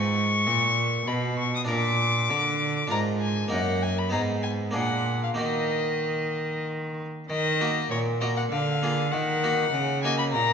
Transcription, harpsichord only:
Already playing: G#2 D#4 F4 B4
0.47 A#2
1.07 B2
1.65 D4 F4 A#4
1.69 A#2
2.30 D3
2.87 D4 F4 A#4
2.92 G#2
3.48 A#3 D#4 A#4
3.53 F#2
4.09 B3 D#4 G#4
4.14 G#2
4.71 A#3 D4 G#4
4.75 A#2
5.34 A#3 D#4 F#4
5.39 D#3
7.30 D#3
7.61 A#3 F#4 A#4
7.91 A#2
8.21 A#3 F#4 A#4
8.52 D3
8.83 A#3 F4 G#4
9.13 D#3
9.44 A#3 D#4 F#4
9.74 C#3
10.04 A#3 D#4 F#4
10.35 A#2

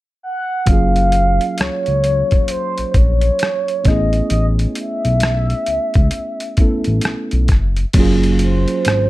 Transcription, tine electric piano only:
0.66 F#3 A#3 C#4
0.71 F4 G#4
3.84 A3 B3 C#4
3.89 E4 G#4
6.58 A3 B3 C#4 E4 A4
7.94 F#3 A#3 C#4
7.98 F4 G#4

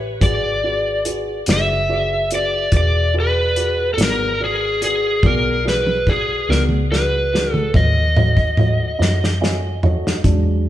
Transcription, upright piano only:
Already playing: G4 B4 C#5 E5
0.21 F#4 G#4 B4 D5
0.64 F#4 G#4 B4 D5
1.05 F#4 G#4 B4 D5
1.48 F#4 G#4 B4 D5
1.89 F#4 G#4 B4 D5
2.32 F#4 G#4 B4 D5
2.72 F#4 G#4 B4 D5
3.14 F#4 G#4 B4 D5
3.56 F#4 G#4 B4 D5
3.97 B3 F#4 G#4 D5
4.40 F#4 G#4 B4 D5
4.82 F#4 G#4 B4 D5
5.23 B3 F#4 G#4 D5
5.65 F#4 G#4 B4 D5
6.08 F#4 G#4 B4 D5
6.49 B3 F#4 G#4 D5
6.91 F#4 G#4 B4 D5
7.33 F#4 G#4 B4 D5
7.75 F#4 A4 C#5 D#5
8.16 F#4 A4 C#5 D#5
8.59 F#4 A4 C#5 D#5
8.99 F#4 A4 C#5 D#5
9.41 F#4 A4 C#5 D#5 G#5
9.83 F#4 A4 C#5 D#5
10.24 F#3 G#3 D4

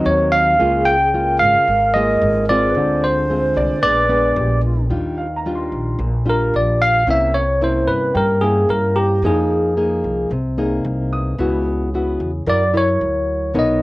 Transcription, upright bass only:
0.05 D#2
0.60 C#2
1.41 G#1
1.68 G#1
2.22 G#1
2.75 D2
3.56 C2
3.83 A#1
4.36 A#1
4.90 D#2
5.72 A#1
5.99 A#1
6.54 A#1
7.07 C2
7.87 G2
8.15 G2
8.69 G2
9.22 F2
10.04 C2
10.31 C2
10.84 C2
11.38 C#2
12.20 E2
12.46 F#2
13.01 D2
13.55 B1

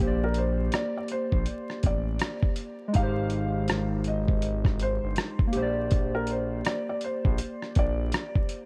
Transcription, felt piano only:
0.24 A#4
0.38 C5
0.75 D5
0.97 D5
1.12 C5
1.86 D5
2.96 F5
4.08 D#5
4.83 C5
6.15 A#4
6.31 C5
6.66 D5
6.89 D5
7.04 C5
7.79 D5

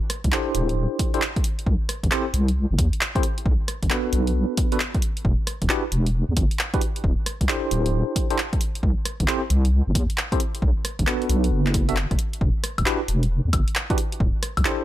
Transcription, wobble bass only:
0.24 C2
0.55 D1
1.67 C2
2.03 A1
2.34 C2
2.71 G1
2.78 E2
3.46 B1
3.83 A1
4.13 B1
5.25 E1
5.62 D1
5.92 E1
6.29 E2
6.37 G1
7.04 D1
7.41 C2
7.71 D1
8.83 C2
9.20 A1
9.50 C2
9.87 G1
9.95 E2
10.62 B1
10.99 A1
11.29 B1
11.52 F#1
12.11 F#1
12.41 E1
12.78 D1
13.08 E1
13.45 E2
13.53 G1
14.20 D1
14.57 C2

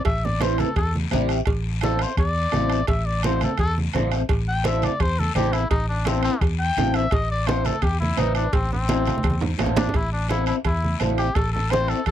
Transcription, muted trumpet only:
0.06 E5
0.25 D5
0.42 C5
0.59 A4
0.77 A4
1.84 A4
2.02 C5
2.18 D5
2.89 E5
3.06 D5
3.25 C5
3.44 A4
3.60 A4
4.48 G5
4.67 E5
4.84 D5
5.02 C5
5.19 A4
5.36 G4
5.52 E4
5.70 D#4
5.89 D4
6.06 C4
6.24 C4
6.59 G5
6.95 E5
7.13 D#5
7.31 D5
7.47 C5
7.65 A4
7.83 G4
8.00 E4
8.19 D#4
8.36 D4
8.53 C4
8.73 C4
9.77 D4
9.96 E4
10.13 D4
10.30 E4
10.47 E4
10.66 E4
11.18 G4
11.35 A4
11.53 A4
11.71 C5
11.89 A4
12.07 A4

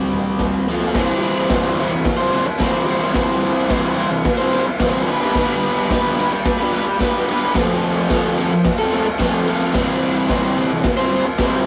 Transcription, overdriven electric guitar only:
Already playing: C3 G3 C4
0.68 F3 C4 F4
0.94 C3 E3 G3 C4 E4
0.98 C5
1.49 C3 E3 G3 C4 E4
1.54 C5
1.77 G3 C4 E4
1.82 C5
1.92 muted overdriven electric guitar stroke
2.17 C4 E4 C5
2.22 G3
2.31 G3 C4 E4
2.35 C5
2.46 muted overdriven electric guitar stroke
2.58 C3 E3 G3 C4 E4
2.63 C5
2.86 G3 C4 E4
2.91 C5
2.99 G3 C4 E4 C5
3.13 C3 E3 G3 C4
3.17 E4 C5
3.68 C3 E3 G3 C4 E4
3.73 C5
3.97 G3 C4 E4
4.02 C5
4.11 muted overdriven electric guitar stroke
4.38 C4 E4 C5
4.43 G3
4.53 G3 C4 E4
4.57 C5
4.67 muted overdriven electric guitar stroke
4.81 C3 E3 G3 C4 E4
4.85 C5
5.07 G3 B3 D4
5.12 B4
5.21 B3 B4
5.26 D4
5.34 G3 B3 D4
5.38 B4
5.89 G3 B3 D4
5.93 B4
6.17 G3 B3 D4
6.21 B4
6.32 muted overdriven electric guitar stroke
6.58 B3 B4
6.62 D4
6.72 G3 B3 D4
6.76 B4
6.87 muted overdriven electric guitar stroke
6.99 G3 B3 D4
7.04 B4
7.27 G3 B3 D4
7.32 B4
7.41 B3 B4
7.45 D4
7.55 F3 A3 C4 F4
7.59 A4
8.09 F3 A3 C4 F4
8.14 A4
8.38 A3 C4 F4
8.42 A4
8.52 muted overdriven electric guitar stroke
8.78 F4 A4
8.83 C4
8.91 A3 C4 F4
8.96 A4
9.07 muted overdriven electric guitar stroke
9.18 F3 A3 C4 F4
9.23 A4
9.46 A3 C4 F4
9.50 A4
9.59 F4 A4
9.64 C4
9.73 C3 E3 G3 C4
9.77 E4 C5
10.29 C3 E3 G3 C4 E4
10.33 C5
10.57 G3 C4 E4
10.61 C5
10.72 muted overdriven electric guitar stroke
10.97 C4 E4 C5
11.02 G3
11.11 G3 C4 E4
11.16 C5
11.26 muted overdriven electric guitar stroke
11.39 C3 E3 G3 C4 E4
11.43 C5

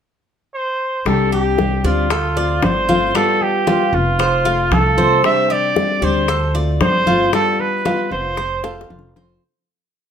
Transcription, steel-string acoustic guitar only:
1.06 C3 G3 C4 D4 G4
1.58 G3 C4 D4 G4
1.84 G3 C4 D4 G4
2.10 muted steel-string acoustic guitar stroke
2.37 A3 C4 F4
2.89 A3 C4 F4
3.15 G3 B3 F4
3.67 G3 B3 F4
3.93 B3 F4
4.19 muted steel-string acoustic guitar stroke
4.45 A3 C4 F4
4.97 F3 A3 C4 F4
5.23 C3 G3 C4 D4 G4
5.76 G3 C4 D4 G4
6.02 G3 C4 D4 G4
6.28 muted steel-string acoustic guitar stroke
6.54 A3 C4 F4
7.06 A3 C4 F4
7.33 G3 B3 F4
7.85 G3 B3 F4
8.11 B3 F4
8.38 muted steel-string acoustic guitar stroke
8.64 A3 C4 F4
9.16 F3 A3 C4 F4

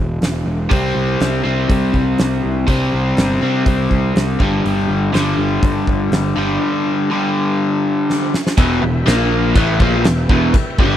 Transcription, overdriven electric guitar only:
0.70 C3 G3 C4
1.43 C3 G3 C4
2.67 C3 G3 C4
3.41 C3 G3 C4
4.39 G2 D3 G3
5.13 G2 D3 G3
6.36 G2 D3 G3
7.10 G2 D3 G3
8.58 E2 B2 E3
8.83 E2 B2
9.06 A#2 F3 A#3
9.55 A2 E3 A3
9.81 A#2 F3 A#3
10.06 E2 B2
10.30 E2 B2 E3
10.56 muted overdriven electric guitar stroke
10.79 G2 D3 G3

